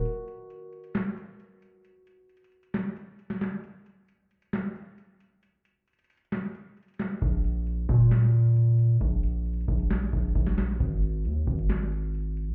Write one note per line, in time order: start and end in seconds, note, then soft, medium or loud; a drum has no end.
0.00 2.27 F#4 medium
0.00 1.73 A#4 medium
0.00 0.40 C#5 medium
0.05 closed hi-hat medium
0.28 closed hi-hat medium
0.50 closed hi-hat medium
0.73 closed hi-hat soft
0.84 closed hi-hat medium
0.95 snare loud
0.95 clap medium
0.95 closed hi-hat medium
1.17 closed hi-hat medium
1.40 closed hi-hat medium
1.62 closed hi-hat medium
1.85 closed hi-hat medium
2.07 closed hi-hat medium
2.29 closed hi-hat soft
2.37 closed hi-hat medium
2.44 closed hi-hat medium
2.52 closed hi-hat soft
2.63 closed hi-hat medium
2.74 snare loud
2.74 clap medium
2.74 closed hi-hat medium
2.97 closed hi-hat medium
3.19 closed hi-hat medium
3.30 snare medium
3.41 snare medium
3.41 clap medium
3.41 open hi-hat medium
3.64 closed hi-hat medium
3.86 closed hi-hat medium
4.08 closed hi-hat medium
4.31 closed hi-hat soft
4.42 closed hi-hat medium
4.53 snare loud
4.53 clap medium
4.53 closed hi-hat medium
4.76 closed hi-hat medium
4.98 closed hi-hat medium
5.20 closed hi-hat medium
5.43 closed hi-hat medium
5.65 closed hi-hat medium
5.88 closed hi-hat soft
5.93 closed hi-hat medium
5.99 closed hi-hat medium
6.04 closed hi-hat medium
6.10 closed hi-hat medium
6.10 open hi-hat medium
6.17 closed hi-hat medium
6.25 closed hi-hat soft
6.32 snare loud
6.32 clap medium
6.32 closed hi-hat medium
6.38 closed hi-hat medium
6.43 closed hi-hat medium
6.49 closed hi-hat soft
6.55 closed hi-hat medium
6.77 closed hi-hat soft
6.83 closed hi-hat medium
6.88 closed hi-hat medium
6.94 closed hi-hat medium
7.00 snare loud
7.00 clap medium
7.00 closed hi-hat medium
7.22 7.86 A#1 loud
7.22 kick loud
7.22 closed hi-hat medium
7.44 closed hi-hat medium
7.67 closed hi-hat medium
7.89 8.97 A#2 loud
7.89 kick loud
7.89 closed hi-hat soft
8.00 closed hi-hat medium
8.11 snare loud
8.11 clap medium
8.11 closed hi-hat medium
8.34 closed hi-hat medium
8.56 closed hi-hat medium
8.79 closed hi-hat medium
9.01 9.65 A#1 loud
9.01 kick loud
9.01 closed hi-hat medium
9.23 closed hi-hat medium
9.46 closed hi-hat soft
9.53 closed hi-hat medium
9.61 closed hi-hat medium
9.68 10.11 A#1 loud
9.68 kick medium
9.68 closed hi-hat soft
9.79 closed hi-hat medium
9.91 snare loud
9.91 clap medium
9.91 closed hi-hat medium
10.13 10.34 A#1 loud
10.13 kick medium
10.13 closed hi-hat medium
10.35 10.78 A#1 loud
10.35 kick loud
10.35 closed hi-hat medium
10.46 snare medium
10.58 snare loud
10.58 clap medium
10.58 open hi-hat medium
10.80 11.26 G#1 loud
10.80 kick loud
10.80 closed hi-hat medium
11.02 closed hi-hat medium
11.25 11.46 D#2 loud
11.25 closed hi-hat medium
11.47 12.50 G#1 loud
11.47 kick loud
11.47 closed hi-hat soft
11.58 closed hi-hat medium
11.70 snare loud
11.70 clap medium
11.70 closed hi-hat medium
11.92 closed hi-hat medium
12.14 closed hi-hat medium
12.37 closed hi-hat medium
12.48 12.55 B1 loud